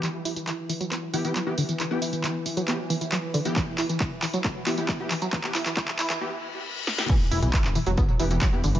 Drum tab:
CC |----------------|----------------|----------------|----------------|
HH |x-oxx-oxx-oxx-ox|x-oxx-oxx-oxx-ox|x-oxx-oxx-oxx-ox|x-oxx-ox--------|
TB |x-xxx-xxx-xxx-xx|x-xxx-xxx-xxx-xx|x-xxx-xxx-xxx-xx|x-xxx-xx--------|
CP |x---x---x---x---|x---x---x---x---|x-x-x-x-x-x-x-x-|xxxxxxxx--------|
SD |----------------|----------------|----------------|--------------oo|
T2 |----------------|----------------|----------------|----------------|
BD |----------------|----------------|o---o---o---o---|o---o-----------|

CC |x---------------|
HH |x-oxx-oxx-oxx-ox|
TB |xxxxxxxxxxxxxxxx|
CP |----xx------x---|
SD |----------------|
T2 |o--o--o--o--o--o|
BD |o---o---o---o---|